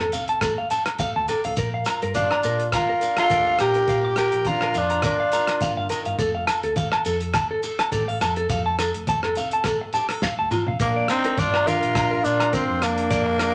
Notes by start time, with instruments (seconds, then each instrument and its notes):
Already playing: steel-string acoustic guitar C4 A4
0.00 clean electric guitar A4, low agogo
0.12 fingered electric bass C2, steel-string acoustic guitar A4, clean electric guitar F5, closed hi-hat, low conga, shekere
0.28 clean electric guitar A5, closed hi-hat
0.41 steel-string acoustic guitar C3, clean electric guitar A4, kick, cross-stick, closed hi-hat, muted conga, high conga, low agogo, shekere
0.58 clean electric guitar F5
0.70 steel-string acoustic guitar A4, clean electric guitar A5, closed hi-hat, low conga, shekere
0.86 cross-stick, closed hi-hat, low agogo
0.99 steel-string acoustic guitar C4 A4, clean electric guitar F5, kick, closed hi-hat, high conga, shekere
1.16 fingered electric bass D2, clean electric guitar A5, high conga
1.28 steel-string acoustic guitar G4, clean electric guitar A4, closed hi-hat, low conga, low agogo, shekere
1.44 fingered electric bass D2, steel-string acoustic guitar A4, clean electric guitar F5, closed hi-hat, low conga
1.56 fingered electric bass A#1, steel-string acoustic guitar A#2 A#4, clean electric guitar A#4, kick, closed hi-hat, shekere
1.74 clean electric guitar F5
1.85 steel-string acoustic guitar F4, clean electric guitar A#5, cross-stick, closed hi-hat, muted conga, low agogo, shekere
2.02 fingered electric bass G2, clean electric guitar A#4, closed hi-hat
2.14 steel-string acoustic guitar F3 G4, tenor saxophone D4, trumpet F4, clean electric guitar F5, kick, closed hi-hat, high conga, shekere
2.31 clean electric guitar A#5, cross-stick, low agogo
2.43 fingered electric bass A#2, steel-string acoustic guitar F4, clean electric guitar A#4, closed hi-hat, shekere
2.60 closed hi-hat
2.72 steel-string acoustic guitar A#2, tenor saxophone F4, trumpet A#4, clean electric guitar A#5, kick, cross-stick, closed hi-hat, muted conga, high conga, low agogo, shekere
2.89 clean electric guitar A#4
3.01 steel-string acoustic guitar D4, closed hi-hat, shekere
3.17 tenor saxophone F4, trumpet A4, clean electric guitar A#5, cross-stick, closed hi-hat, low agogo
3.30 fingered electric bass D2, steel-string acoustic guitar F3 D4, clean electric guitar A#4, kick, closed hi-hat, high conga, shekere
3.47 clean electric guitar F5
3.59 fingered electric bass A#2, steel-string acoustic guitar F4, tenor saxophone G4, trumpet A#4, clean electric guitar A#5, cross-stick, closed hi-hat, low agogo, shekere
3.74 clean electric guitar A#4, closed hi-hat
3.88 fingered electric bass A#2, steel-string acoustic guitar A#2 F4, clean electric guitar F5, kick, closed hi-hat, muted conga, shekere
4.05 clean electric guitar D6
4.16 tenor saxophone G4, clean electric guitar A#4, trumpet A#4, cross-stick, closed hi-hat, muted conga, low agogo, shekere
4.32 fingered electric bass A#1, closed hi-hat
4.45 steel-string acoustic guitar F3 D4, tenor saxophone F4, clean electric guitar A#5, kick, closed hi-hat, high conga, shekere
4.49 trumpet A#4
4.61 clean electric guitar A#4, cross-stick, low agogo
4.74 fingered electric bass F2, tenor saxophone D4, steel-string acoustic guitar F4, trumpet F4, clean electric guitar F5, closed hi-hat, low conga, shekere
4.90 clean electric guitar A#5, closed hi-hat
5.02 steel-string acoustic guitar A#2, tenor saxophone D4, trumpet F4, clean electric guitar A#4, kick, cross-stick, closed hi-hat, muted conga, high conga, low agogo, shekere
5.20 clean electric guitar F5
5.32 steel-string acoustic guitar A#4, clean electric guitar A#5, closed hi-hat, shekere
5.47 cross-stick, closed hi-hat, low agogo
5.61 steel-string acoustic guitar D3, clean electric guitar F5, kick, closed hi-hat, high conga, shekere
5.77 fingered electric bass G1, clean electric guitar F5
5.89 steel-string acoustic guitar D#3, clean electric guitar A#4, closed hi-hat, muted conga, low agogo, shekere
6.05 fingered electric bass G1, clean electric guitar F5, closed hi-hat
6.19 fingered electric bass F1, steel-string acoustic guitar F3 A4, clean electric guitar A4, kick, closed hi-hat, shekere
6.35 clean electric guitar F5
6.47 steel-string acoustic guitar A4, clean electric guitar A5, cross-stick, closed hi-hat, muted conga, low agogo, shekere
6.63 fingered electric bass D2, clean electric guitar A4, closed hi-hat
6.76 steel-string acoustic guitar C4 A4, clean electric guitar F5, kick, closed hi-hat, high conga, shekere
6.92 clean electric guitar A5, cross-stick, low agogo
7.05 fingered electric bass F2, clean electric guitar A4, steel-string acoustic guitar A4, closed hi-hat, shekere
7.20 closed hi-hat
7.33 steel-string acoustic guitar C3, clean electric guitar A5, kick, cross-stick, closed hi-hat, muted conga, high conga, low agogo, shekere
7.51 clean electric guitar A4
7.63 steel-string acoustic guitar A4, closed hi-hat, shekere
7.79 clean electric guitar A5, cross-stick, closed hi-hat, low agogo
7.92 fingered electric bass A1, steel-string acoustic guitar C4 G4, clean electric guitar A4, kick, closed hi-hat, high conga, shekere
8.08 steel-string acoustic guitar A4, clean electric guitar F5
8.21 fingered electric bass F2, steel-string acoustic guitar A4, clean electric guitar A5, cross-stick, closed hi-hat, low agogo, shekere
8.36 clean electric guitar A4, closed hi-hat
8.49 fingered electric bass F2, steel-string acoustic guitar F3 A4, clean electric guitar F5, kick, closed hi-hat, shekere
8.66 clean electric guitar A5
8.79 steel-string acoustic guitar A4, clean electric guitar A4, cross-stick, closed hi-hat, muted conga, low agogo, shekere
8.94 fingered electric bass F1, closed hi-hat
9.07 steel-string acoustic guitar C4 A4, clean electric guitar A5, kick, closed hi-hat, high conga, shekere
9.23 clean electric guitar A4, cross-stick, low agogo
9.35 fingered electric bass C2, steel-string acoustic guitar A4, clean electric guitar F5, closed hi-hat, low conga, shekere
9.51 clean electric guitar A5, closed hi-hat
9.64 steel-string acoustic guitar C3, clean electric guitar A4, kick, cross-stick, closed hi-hat, muted conga, high conga, low agogo, shekere
9.81 muted clean electric guitar stroke
9.93 steel-string acoustic guitar G4, clean electric guitar A5, closed hi-hat, low conga, shekere
10.09 steel-string acoustic guitar A4, cross-stick, closed hi-hat, low agogo
10.22 steel-string acoustic guitar C4, clean electric guitar F5, kick, snare, high conga, shekere
10.38 fingered electric bass D2, clean electric guitar A5
10.51 clean electric guitar F4, steel-string acoustic guitar A4, mid tom, low agogo, shekere
10.67 fingered electric bass A1, clean electric guitar F5, floor tom
10.80 fingered electric bass A#1, steel-string acoustic guitar A#2, tenor saxophone A#3, trumpet D4, clean electric guitar A#4, kick, closed hi-hat, shekere
10.96 clean electric guitar D5
11.08 tenor saxophone C4, steel-string acoustic guitar D4, trumpet D#4, cross-stick, closed hi-hat, low agogo, shekere
11.24 clean electric guitar A#4, closed hi-hat
11.37 fingered electric bass G1, steel-string acoustic guitar F3, tenor saxophone D4, trumpet F4, clean electric guitar D5, kick, closed hi-hat, high conga, shekere
11.54 clean electric guitar A#5, cross-stick, low agogo
11.67 steel-string acoustic guitar D4, tenor saxophone F4, clean electric guitar A#4, trumpet A#4, closed hi-hat, muted conga, high conga, shekere
11.83 fingered electric bass A#1, closed hi-hat
11.95 steel-string acoustic guitar A#2, clean electric guitar A#5, kick, cross-stick, closed hi-hat, low agogo, shekere
12.11 clean electric guitar A#4
12.24 fingered electric bass A#2, tenor saxophone D4, trumpet F4, steel-string acoustic guitar A#4, closed hi-hat, shekere
12.40 clean electric guitar A#5, cross-stick, closed hi-hat, low agogo
12.53 steel-string acoustic guitar F3, tenor saxophone C4, trumpet F4, clean electric guitar A#4, kick, closed hi-hat, high conga, shekere
12.69 fingered electric bass F2
12.82 tenor saxophone A#3, steel-string acoustic guitar D4, trumpet D4, cross-stick, closed hi-hat, low agogo, shekere
12.98 closed hi-hat
13.10 fingered electric bass F2, steel-string acoustic guitar A#2, clean electric guitar D5, kick, closed hi-hat, shekere
13.26 muted clean electric guitar stroke
13.39 steel-string acoustic guitar D4, clean electric guitar A#4, cross-stick, closed hi-hat, muted conga, low agogo, shekere